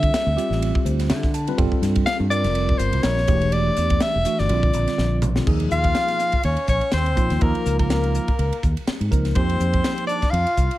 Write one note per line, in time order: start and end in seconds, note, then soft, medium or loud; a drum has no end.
0.00 0.29 G3 medium
0.00 0.29 C4 medium
0.00 0.29 F4 medium
0.00 0.29 A4 medium
0.00 0.96 E5 medium
0.00 kick medium
0.00 ride medium
0.13 muted fingered electric bass stroke soft
0.13 snare loud
0.13 ride medium
0.26 0.36 D2 medium
0.36 1.25 G3 medium
0.36 1.25 C4 medium
0.36 1.25 F4 medium
0.36 1.25 G4 loud
0.36 hi-hat pedal medium
0.36 ride medium
0.50 0.71 A1 medium
0.50 snare soft
0.62 ride medium
0.75 kick medium
0.85 1.11 D2 medium
0.85 1.08 C5 medium
0.85 hi-hat pedal medium
0.85 ride medium
0.99 snare soft
0.99 ride medium
1.09 1.50 D3 medium
1.09 1.33 E5 medium
1.09 snare loud
1.09 ride medium
1.23 kick medium
1.23 snare soft
1.34 1.57 A5 medium
1.34 hi-hat pedal medium
1.34 ride medium
1.47 1.57 G3 medium
1.47 1.57 C4 medium
1.47 1.56 F4 medium
1.47 1.58 B4 loud
1.47 ride medium
1.57 1.70 G1 loud
1.57 2.25 G3 medium
1.57 2.25 C4 medium
1.57 2.24 F4 medium
1.57 2.24 A4 loud
1.57 kick loud
1.57 ride medium
1.72 kick medium
1.82 2.02 G2 medium
1.82 snare soft
1.82 hi-hat pedal medium
1.82 ride medium
1.95 kick medium
1.95 ride medium
2.06 2.17 F5 loud
2.06 snare loud
2.06 ride medium
2.20 2.46 G2 loud
2.30 3.20 G3 medium
2.30 3.19 C4 medium
2.30 3.19 F4 medium
2.30 3.20 A#4 medium
2.30 2.79 D5 loud
2.30 hi-hat pedal medium
2.30 ride medium
2.44 2.74 F1 medium
2.44 snare soft
2.44 ride medium
2.55 ride medium
2.69 kick medium
2.78 2.91 G1 medium
2.78 3.04 C5 loud
2.78 hi-hat pedal medium
2.78 ride medium
2.93 3.02 C2 medium
2.93 ride medium
3.03 3.24 A#1 medium
3.03 3.54 C#5 loud
3.03 snare loud
3.03 ride medium
3.17 snare soft
3.27 3.69 E1 loud
3.27 4.17 E3 medium
3.27 4.16 A3 medium
3.27 4.17 D4 medium
3.27 4.17 G4 medium
3.27 kick loud
3.27 hi-hat pedal medium
3.27 ride medium
3.41 ride medium
3.52 4.03 D5 medium
3.52 ride medium
3.77 3.98 E2 medium
3.77 hi-hat pedal medium
3.77 ride medium
3.90 kick medium
3.90 ride medium
4.01 4.41 E5 medium
4.01 muted fingered electric bass stroke soft
4.01 snare loud
4.01 ride medium
4.15 4.24 E1 medium
4.25 4.50 E3 medium
4.25 4.50 A3 medium
4.25 4.50 D4 medium
4.25 4.50 F#4 medium
4.25 hi-hat pedal medium
4.25 ride medium
4.38 4.48 G1 medium
4.38 5.23 D5 medium
4.38 snare soft
4.49 4.70 A#1 loud
4.49 5.26 D3 medium
4.49 5.26 G3 medium
4.49 5.26 C4 medium
4.49 5.27 F4 medium
4.49 ride medium
4.63 kick medium
4.73 4.85 A#1 medium
4.73 hi-hat pedal medium
4.73 ride medium
4.88 snare soft
4.88 ride medium
4.98 5.39 A#1 loud
4.98 snare medium
5.22 hi-hat pedal medium
5.22 mid tom medium
5.35 5.45 D3 medium
5.35 5.46 G3 medium
5.35 5.46 C4 medium
5.35 5.46 F4 medium
5.35 snare medium
5.46 5.67 D#2 medium
5.46 6.35 F3 medium
5.46 6.35 A#3 medium
5.46 6.36 D#4 medium
5.46 6.36 G#4 medium
5.46 kick loud
5.46 crash medium
5.60 ride medium
5.71 5.92 D#2 medium
5.71 6.40 F4 medium
5.71 6.40 F5 loud
5.71 hi-hat pedal medium
5.84 kick medium
5.84 ride medium
5.95 snare loud
5.95 ride medium
6.08 snare soft
6.08 ride medium
6.19 snare soft
6.19 hi-hat pedal medium
6.32 kick medium
6.32 ride medium
6.43 6.56 D#2 medium
6.43 6.67 C#4 medium
6.43 6.67 C#5 medium
6.43 ride medium
6.57 ride medium
6.67 6.79 A#1 medium
6.67 6.91 C#5 medium
6.67 kick medium
6.67 hi-hat pedal medium
6.71 6.93 C#4 medium
6.81 ride medium
6.92 7.17 D#2 medium
6.92 7.46 C4 medium
6.92 7.43 C5 medium
6.92 snare medium
6.92 ride medium
7.06 ride medium
7.16 7.28 A#1 medium
7.16 7.38 F3 medium
7.16 7.38 A#3 medium
7.16 7.38 D#4 medium
7.16 7.38 F4 medium
7.16 kick medium
7.16 hi-hat pedal medium
7.30 7.40 D#2 medium
7.30 snare soft
7.30 ride soft
7.39 7.53 D#2 medium
7.39 8.29 F3 medium
7.39 8.29 A#3 medium
7.39 8.29 D#4 medium
7.39 8.29 F4 medium
7.39 7.79 A#4 medium
7.39 kick loud
7.39 ride medium
7.44 7.80 A#3 medium
7.55 ride soft
7.66 8.18 C#2 medium
7.66 hi-hat pedal medium
7.79 8.73 A#3 medium
7.79 8.73 A#4 medium
7.79 kick medium
7.79 ride medium
7.90 snare loud
7.90 ride medium
8.04 ride medium
8.15 hi-hat pedal medium
8.28 muted fingered electric bass stroke soft
8.28 kick medium
8.28 ride medium
8.39 8.50 C#2 medium
8.39 ride medium
8.52 muted fingered electric bass stroke soft
8.52 ride medium
8.63 8.74 D#2 medium
8.63 kick medium
8.63 hi-hat pedal medium
8.77 ride medium
8.88 muted fingered electric bass stroke soft
8.88 snare loud
8.88 ride medium
9.00 9.10 G#2 medium
9.00 ride medium
9.11 9.32 C#2 medium
9.11 9.34 F3 medium
9.11 9.34 A#3 medium
9.11 9.34 D#4 medium
9.11 9.34 A#4 medium
9.11 kick medium
9.11 hi-hat pedal medium
9.25 snare soft
9.25 ride medium
9.35 9.56 F2 medium
9.35 10.24 F3 medium
9.35 10.24 A#3 medium
9.35 10.05 C4 medium
9.35 10.24 D#4 medium
9.35 10.25 G4 medium
9.35 10.04 C5 medium
9.35 kick loud
9.35 ride medium
9.49 ride medium
9.60 9.80 F2 medium
9.60 hi-hat pedal medium
9.73 kick medium
9.73 ride medium
9.84 snare medium
9.84 ride medium
9.98 ride medium
10.07 10.33 D4 medium
10.07 10.32 D5 medium
10.07 hi-hat pedal medium
10.22 kick medium
10.22 snare soft
10.22 ride medium
10.31 10.44 F2 loud
10.31 10.78 F4 medium
10.31 10.78 F5 medium
10.31 ride medium
10.47 ride medium
10.57 10.68 C2 medium
10.57 kick medium
10.57 hi-hat pedal medium
10.71 ride medium